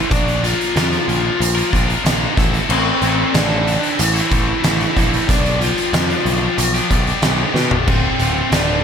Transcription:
Already playing: distorted electric guitar D3, lead electric guitar E4
0.10 picked electric bass A#1, distorted electric guitar A#2 F3 A#3 D4 F4 A#4, lead electric guitar D4 D5, kick, closed hi-hat
0.28 closed hi-hat
0.43 lead electric guitar F3 F4, distorted electric guitar A#3 D4 F4 A#4, closed hi-hat
0.61 closed hi-hat
0.75 picked electric bass F2, distorted electric guitar A#2 F3 A#3 D4 F4 A#4, snare, closed hi-hat
0.91 distorted electric guitar A#3 D4 F4 A#4, closed hi-hat
1.08 picked electric bass A#1, closed hi-hat
1.40 picked electric bass A#1, muted distorted electric guitar stroke, closed hi-hat
1.55 distorted electric guitar A#3 D4 F4 A#4, closed hi-hat
1.70 picked electric bass A#1, distorted electric guitar A#3 D4 F4 A#4, kick, closed hi-hat
1.90 closed hi-hat
2.03 picked electric bass A#1, distorted electric guitar A#2 F3 A#3 D4 F4 A#4, snare, closed hi-hat
2.20 distorted electric guitar A#3 D4 F4 A#4
2.35 picked electric bass A1, distorted electric guitar A2 E3 A3 C4 E4 A4, kick, snare, closed hi-hat
2.52 distorted electric guitar A3 C4 E4 A4, closed hi-hat
2.69 picked electric bass A1, distorted electric guitar A2 E3 A3 C4 E4 A4, lead electric guitar C4 C5, crash
3.02 picked electric bass A1, distorted electric guitar A3 C4 E4 A4, closed hi-hat
3.34 picked electric bass A1, distorted electric guitar A2 E3 A3 C4 E4 A4, lead electric guitar D4 D5, snare, closed hi-hat
3.50 distorted electric guitar A3 C4 E4 A4
3.67 closed hi-hat
3.83 closed hi-hat
3.99 picked electric bass A1, lead electric guitar E3 E4, muted distorted electric guitar stroke, closed hi-hat
4.14 distorted electric guitar A3 C4 E4 A4, closed hi-hat
4.30 picked electric bass A1, distorted electric guitar A3 C4 E4 A4, kick, closed hi-hat
4.62 picked electric bass A1, distorted electric guitar A2 E3 A3 C4 E4 A4, lead electric guitar E3 E4, snare, closed hi-hat
4.79 distorted electric guitar A3 C4 E4 A4, closed hi-hat
4.96 picked electric bass A#1, distorted electric guitar A3 C4 E4 A4, kick, snare, closed hi-hat
5.12 distorted electric guitar A3 C4 E4 A4, closed hi-hat
5.28 picked electric bass B1, distorted electric guitar G2 D3 G3 B3 D4 G4, lead electric guitar D4 D5, kick, closed hi-hat
5.46 closed hi-hat
5.61 lead electric guitar F3 F4, distorted electric guitar G3 B3 D4 G4, closed hi-hat
5.78 closed hi-hat
5.92 picked electric bass F2, distorted electric guitar G2 D3 G3 B3 D4 G4, snare, closed hi-hat
6.09 distorted electric guitar G3 B3 D4 G4, closed hi-hat
6.25 picked electric bass B1, closed hi-hat
6.58 picked electric bass B1, muted distorted electric guitar stroke, closed hi-hat
6.75 distorted electric guitar G3 B3 D4 G4, closed hi-hat
6.91 picked electric bass B1, distorted electric guitar G3 B3 D4 G4, kick, closed hi-hat
7.07 closed hi-hat
7.22 picked electric bass B1, distorted electric guitar G2 D3 G3 B3 D4 G4, snare, closed hi-hat
7.39 distorted electric guitar G3 B3 D4 G4
7.54 picked electric bass B2, distorted electric guitar G3 B3 D4 G4, snare
7.71 distorted electric guitar G3 B3 D4 G4, floor tom
7.87 picked electric bass D1, distorted electric guitar D2 A2 D3 A3 F4, lead electric guitar C4 C5, kick, crash
8.19 picked electric bass D1, distorted electric guitar A2 D3 A3 F4, closed hi-hat
8.51 picked electric bass D1, distorted electric guitar D2 A2 D3 A3 F4, lead electric guitar D4 D5, snare, closed hi-hat
8.68 distorted electric guitar D3 A3 F4

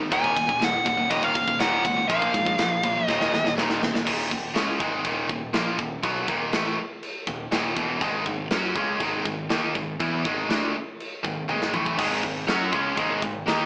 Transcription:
0.00 distorted electric guitar G#2 D#3
0.11 picked electric bass D#1, distorted electric guitar D#2 A#2 D#3, lead electric guitar G#5, kick, ride
0.24 kick
0.36 picked electric bass D#1, distorted electric guitar D#2 A#2, kick, ride
0.47 distorted electric guitar D#2 A#2, kick
0.60 picked electric bass D#1, distorted electric guitar D#2 A#2, snare, ride
0.64 lead electric guitar F#5
0.85 picked electric bass D#1, distorted electric guitar D#2 A#2, lead electric guitar F#5, kick, ride
0.97 distorted electric guitar D#2 A#2
1.10 picked electric bass D#1, distorted electric guitar D#2 A#2 D#3, lead electric guitar D#5, kick, ride
1.23 lead electric guitar F5, kick
1.35 picked electric bass D#1, distorted electric guitar D#2 A#2, kick, ride
1.48 distorted electric guitar D#2 A#2, kick
1.59 picked electric bass D#1, distorted electric guitar D#2 A#2 D#3, lead electric guitar F#5, snare, ride
1.84 picked electric bass C#2, distorted electric guitar D#2 A#2, lead electric guitar F#5, kick, ride
1.96 distorted electric guitar D#2 A#2
2.08 picked electric bass A#1, distorted electric guitar A#2 F3 A#3, lead electric guitar F5, kick, ride
2.22 kick
2.34 picked electric bass G#2, distorted electric guitar A#2 F3, kick, ride
2.45 distorted electric guitar A#2 F3, kick
2.58 picked electric bass A#1, distorted electric guitar A#2 F3, snare, ride
2.83 picked electric bass A#1, distorted electric guitar A#2 F3, kick, ride
2.95 distorted electric guitar A#2 F3
3.04 picked electric bass D#1, distorted electric guitar D#2, lead electric guitar D#5
3.08 distorted electric guitar A#2 D#3, kick, snare
3.21 snare
3.32 picked electric bass D#1, distorted electric guitar D#2 A#2, snare
3.44 distorted electric guitar D#2 A#2, snare
3.57 picked electric bass D#1, distorted electric guitar D#2 A#2 D#3, snare
3.70 snare
3.82 distorted electric guitar D#2 A#2, snare
3.94 distorted electric guitar D#2 A#2, snare
4.05 picked electric bass D#1, distorted electric guitar D#2 A#2 D#3, kick, crash, china
4.30 picked electric bass D#1, distorted electric guitar D#2 A#2, kick
4.54 picked electric bass C#2, distorted electric guitar C#3 G#3 C#4, snare, china
4.79 picked electric bass G#1, distorted electric guitar G#2 D#3 G#3, kick
5.04 picked electric bass D#1, distorted electric guitar D#2 A#2 D#3, kick, china
5.29 picked electric bass D#1, distorted electric guitar D#2 A#2, kick
5.53 picked electric bass A#1, distorted electric guitar A#2 F3 A#3, snare, china
5.78 picked electric bass D#1, distorted electric guitar D#2 A#2, kick
6.03 picked electric bass B1, distorted electric guitar B2 F#3 B3, kick, china
6.27 picked electric bass D#1, distorted electric guitar D#2 A#2 D#3, kick
6.53 picked electric bass A1, distorted electric guitar A2 E3 A3, snare, china
7.03 china
7.27 picked electric bass D#1, distorted electric guitar D#2 A#2, kick
7.51 picked electric bass D#1, distorted electric guitar D#2 A#2 D#3, snare, china
7.76 picked electric bass E1, distorted electric guitar E2 B2 E3, kick
8.01 picked electric bass G#1, distorted electric guitar G#2 D#3 G#3, kick, china
8.26 picked electric bass G#1, distorted electric guitar G#2 D#3, kick
8.51 picked electric bass F#2, distorted electric guitar F#3 C#4 F#4, snare, china
8.75 picked electric bass C#2, distorted electric guitar C#3 G#3 C#4, kick
9.00 picked electric bass G#1, distorted electric guitar G#2 D#3 G#3, kick, china
9.25 picked electric bass G#1, distorted electric guitar G#2 D#3, kick
9.49 picked electric bass D#2, distorted electric guitar D#3 A#3 D#4, snare, china
9.75 picked electric bass G#1, distorted electric guitar G#2 D#3, kick
10.00 picked electric bass E2, distorted electric guitar E3 B3 E4, kick, china
10.24 picked electric bass G#1, distorted electric guitar G#2 D#3 G#3, kick
10.49 picked electric bass D2, distorted electric guitar D3 A3 D4, snare, china
11.00 china
11.23 picked electric bass G#1, distorted electric guitar G#2 D#3, kick
11.48 picked electric bass G#1, distorted electric guitar G#2 D#3 G#3, high tom
11.62 snare
11.73 picked electric bass A1, distorted electric guitar A2 E3 A3, mid tom
11.86 kick
11.98 picked electric bass G#1, distorted electric guitar G#2 D#3 G#3, kick, crash, china
12.23 picked electric bass G#1, distorted electric guitar G#2 D#3, kick
12.47 picked electric bass F#2, distorted electric guitar F#3 C#4 F#4, snare, china
12.71 picked electric bass C#2, distorted electric guitar C#3 G#3 C#4, kick
12.96 picked electric bass G#1, distorted electric guitar G#2 D#3 G#3, kick, china
13.21 picked electric bass G#1, distorted electric guitar G#2 D#3, kick
13.46 picked electric bass D#2, distorted electric guitar D#3 A#3 D#4, snare, china

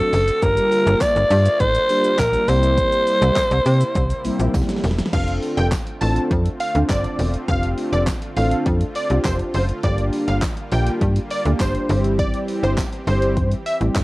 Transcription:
Already playing: supersaw synth D3 A3 C4 F#4, analog polysynth F#3 A3 C4 D4 F#4, alto saxophone A4
0.13 fm bass F#1, open hi-hat, shaker
0.28 closed hi-hat, shaker
0.42 fm bass G1, analog polysynth G3 A#3 D4 F4 G4, supersaw synth G3 A#3 F4, alto saxophone A#4, kick, closed hi-hat, shaker
0.57 closed hi-hat, shaker
0.72 open hi-hat, shaker
0.87 fm bass G1, closed hi-hat, shaker
1.01 alto saxophone D5, kick, snare, clap, closed hi-hat, tambourine, shaker
1.16 fm bass G1, closed hi-hat, shaker
1.31 fm bass G2, open hi-hat, shaker
1.46 closed hi-hat, shaker
1.60 fm bass A1, alto saxophone C5, kick, closed hi-hat, shaker
1.75 closed hi-hat, shaker
1.89 analog polysynth G3 A#3 D4 F4 G4, open hi-hat, shaker
2.04 closed hi-hat, shaker
2.19 fm bass A#1, alto saxophone A#4, kick, snare, clap, closed hi-hat, tambourine, shaker
2.33 closed hi-hat, shaker
2.48 fm bass C2, supersaw synth C3 A#3 E4, analog polysynth G3 A#3 C4 E4 G4, alto saxophone C5, open hi-hat, shaker
2.63 closed hi-hat, shaker
2.78 kick, closed hi-hat, shaker
2.92 closed hi-hat, shaker
3.07 open hi-hat, shaker
3.22 fm bass C2, closed hi-hat, shaker
3.36 kick, snare, clap, closed hi-hat, tambourine, shaker
3.51 fm bass C2, closed hi-hat, shaker
3.66 fm bass C3, open hi-hat, shaker
3.81 closed hi-hat, shaker
3.95 fm bass C2, kick, closed hi-hat, shaker
4.10 closed hi-hat, shaker
4.24 fm bass A#1, analog polysynth G3 A#3 C4 E4 G4, open hi-hat, shaker
4.39 fm bass A#1, closed hi-hat, shaker
4.54 fm bass C2, kick, snare, closed hi-hat, tambourine, shaker
4.62 snare
4.69 snare, closed hi-hat, shaker
4.76 snare
4.84 fm bass E1, snare, open hi-hat, shaker
4.91 snare
4.98 snare, closed hi-hat, shaker
5.06 snare
5.13 fm bass F1, supersaw synth D3 A3 C4 F4, analog polysynth C4 D4 F4 A4, digital synth lead F5, kick, closed hi-hat, crash
5.28 closed hi-hat
5.42 open hi-hat
5.57 fm bass F1, digital synth lead G5, closed hi-hat
5.72 kick, snare, clap, closed hi-hat, tambourine
5.87 closed hi-hat
6.01 fm bass A1, analog polysynth C4 D4 F4 A4, digital synth lead A5, open hi-hat
6.16 closed hi-hat
6.31 fm bass F2, kick, closed hi-hat
6.46 closed hi-hat
6.60 digital synth lead F5, open hi-hat
6.75 fm bass D2, analog polysynth C4 D4 F4 C5, closed hi-hat
6.89 fm bass G1, digital synth lead D5, kick, snare, clap, closed hi-hat, tambourine
7.04 closed hi-hat
7.19 fm bass E1, open hi-hat
7.34 closed hi-hat
7.48 fm bass F1, analog polysynth C4 D4 F4 G4, digital synth lead F5, kick, closed hi-hat
7.63 closed hi-hat
7.78 open hi-hat
7.93 fm bass F1, digital synth lead D5, closed hi-hat
8.07 kick, snare, clap, closed hi-hat, tambourine
8.22 closed hi-hat
8.36 fm bass A1, analog polysynth C4 D4 F4 A4, digital synth lead F5, open hi-hat
8.51 closed hi-hat
8.66 fm bass F2, kick, closed hi-hat
8.81 closed hi-hat
8.95 digital synth lead D5, open hi-hat
9.10 fm bass C2, analog polysynth C4 D4 F4 G4, closed hi-hat
9.25 fm bass F1, digital synth lead C5, kick, snare, clap, closed hi-hat, tambourine
9.39 closed hi-hat
9.54 fm bass F#1, digital synth lead C5, open hi-hat
9.69 closed hi-hat
9.83 fm bass G1, supersaw synth G3 A#3, analog polysynth A#3 D4 F4 G4, digital synth lead D5, kick, closed hi-hat
9.98 closed hi-hat
10.13 open hi-hat
10.28 fm bass G1, digital synth lead F5, closed hi-hat
10.42 kick, snare, clap, closed hi-hat, tambourine
10.57 closed hi-hat
10.72 fm bass A#1, analog polysynth A#3 D4 F4 G4, digital synth lead G5, open hi-hat
10.87 closed hi-hat
11.01 fm bass G2, kick, closed hi-hat
11.16 closed hi-hat
11.30 digital synth lead D5, open hi-hat
11.45 fm bass D2, analog polysynth A#3 D4 F4 G4, closed hi-hat
11.60 fm bass G1, digital synth lead C5, kick, snare, clap, closed hi-hat, tambourine
11.75 closed hi-hat
11.89 fm bass G1, supersaw synth E3 C4 G4, analog polysynth G3 C4 E4 G4, open hi-hat
12.04 closed hi-hat
12.19 digital synth lead D5, kick, closed hi-hat
12.34 closed hi-hat
12.48 open hi-hat
12.63 fm bass G1, digital synth lead C5, closed hi-hat
12.77 kick, snare, clap, closed hi-hat, tambourine
12.92 closed hi-hat
13.07 fm bass G1, analog polysynth G3 C4 E4 G4, digital synth lead C5, open hi-hat
13.22 closed hi-hat
13.37 fm bass G2, kick, closed hi-hat
13.51 closed hi-hat
13.66 digital synth lead E5, open hi-hat
13.80 fm bass A1, analog polysynth G3 C4 E4 G4, closed hi-hat
13.95 fm bass G1, kick, snare, clap, closed hi-hat, tambourine

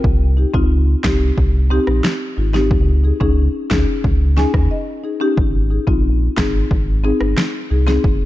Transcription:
0.04 sub bass C2, kick
0.37 marimba D#4 G4
0.54 sub bass C#2, marimba C4 D#4 F4, kick
1.04 sub bass C2, marimba C4 D#4 G4, finger snap, kick, snare
1.38 sub bass C2, kick
1.70 marimba C4 D#4 G4
1.87 sub bass A#1, cross-stick
2.04 finger snap, snare
2.37 sub bass G#1, marimba D#4 F4
2.54 marimba C4 D#4 G4, snare
2.71 sub bass C#2, kick
3.04 marimba D#4 G#4
3.20 sub bass C#2, marimba C#4 D#4 G#4, kick
3.70 sub bass C#2, marimba C#4 D#4 G#4, finger snap, kick, snare
4.04 sub bass C#2, kick
4.37 marimba C#4 D#4 G#4 G#5, snare
4.54 sub bass D#2, kick, cross-stick
4.71 marimba D#5
5.04 marimba D#4 G#4
5.20 marimba C#4 D#4 G4
5.37 sub bass G#1, kick
5.70 marimba D#4 G#4
5.87 sub bass A#1, marimba C4 D#4 F4, kick
6.37 sub bass G#1, marimba C4 D#4 G#4, finger snap, kick, snare
6.71 sub bass G#1, kick
7.04 marimba C4 D#4 G#4
7.21 sub bass G1, cross-stick
7.38 finger snap, snare
7.70 sub bass C2, marimba D#4 G#4
7.87 marimba C4 D#4 G#4, snare
8.04 sub bass F1, kick

